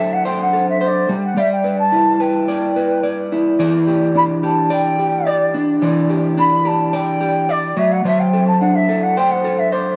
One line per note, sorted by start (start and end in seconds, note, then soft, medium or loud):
0.00 1.08 F#3 medium
0.00 1.92 D4 medium
0.00 0.52 A4 medium
0.00 0.24 C5 medium
0.00 0.15 E5 medium
0.13 0.26 F#5 medium
0.25 0.80 C5 medium
0.25 0.39 G5 medium
0.41 0.66 F#5 medium
0.53 1.14 A4 medium
0.70 0.84 E5 medium
0.81 1.14 C5 medium
0.81 0.88 E5 medium
0.87 1.10 D5 medium
1.09 1.36 G3 medium
1.25 1.40 F#5 medium
1.37 3.59 G3 medium
1.37 2.48 D5 medium
1.37 1.51 E5 medium
1.52 1.77 G5 medium
1.64 2.20 B4 medium
1.79 2.23 A5 medium
1.92 3.32 E4 medium
2.20 2.76 B4 medium
2.20 3.04 G5 medium
2.48 3.03 D5 medium
2.76 3.87 B4 medium
3.03 3.59 D5 medium
3.32 4.15 E4 medium
3.59 5.81 E3 medium
3.59 4.70 D5 medium
3.87 4.42 G4 medium
4.15 5.54 D4 medium
4.15 4.23 B5 medium
4.43 4.98 G4 medium
4.43 4.70 A5 medium
4.70 5.26 D5 medium
4.70 5.30 G5 medium
4.99 6.08 G4 medium
5.27 5.82 D5 medium
5.27 5.69 D5 medium
5.54 6.37 D4 medium
5.82 7.76 E3 medium
5.82 6.93 D5 medium
6.10 6.64 G4 medium
6.37 8.08 D4 medium
6.37 6.69 B5 medium
6.65 7.19 G4 medium
6.65 6.96 A5 medium
6.93 7.49 D5 medium
6.93 7.52 G5 medium
7.21 7.82 G4 medium
7.49 8.05 D5 medium
7.49 7.80 D5 medium
7.77 8.03 F#3 medium
7.77 7.93 E5 medium
7.92 8.05 F#5 medium
8.05 9.96 F#3 medium
8.05 9.16 C5 medium
8.05 8.21 E5 medium
8.20 8.47 G5 medium
8.33 8.88 A4 medium
8.47 8.60 A5 medium
8.61 9.96 D4 medium
8.61 8.77 F#5 medium
8.75 9.05 E5 medium
8.89 9.43 A4 medium
9.03 9.19 F#5 medium
9.17 9.71 C5 medium
9.17 9.33 G5 loud
9.31 9.60 F#5 medium
9.44 9.96 A4 medium
9.59 9.74 E5 medium
9.72 9.96 C5 medium
9.72 9.96 D5 medium